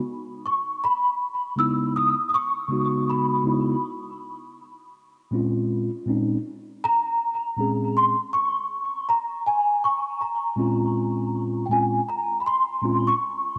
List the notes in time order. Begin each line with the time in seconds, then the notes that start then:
0.46 C#6
0.84 B5
1.56 C#3 G#3 B3 D#4 E4 E6
1.96 D#6
2.29 D#6
2.34 C#6
2.68 C#3 G#3 B3 D#4
2.73 F#4
3.10 B5
3.44 C#3 G#3 B3 D#4 E4
5.31 A#2 G#3 C4 C#4
5.35 F4
6.06 A#2 G#3 C4 C#4 D#4
6.84 A#5
7.57 A#2 G#3 C4 C#4 G#4
7.97 C6
8.33 C#6
9.09 A#5
9.46 G#5
9.84 C#6
10.21 A#5
10.56 A#2 G#3 C4 C#4 F4
11.66 A#2 G5
11.70 G#3 C4 C#4 F4 G#5
12.09 A#5
12.40 B5
12.46 C6
12.82 A#2 G#3 C4 C#4 F4
13.07 C#6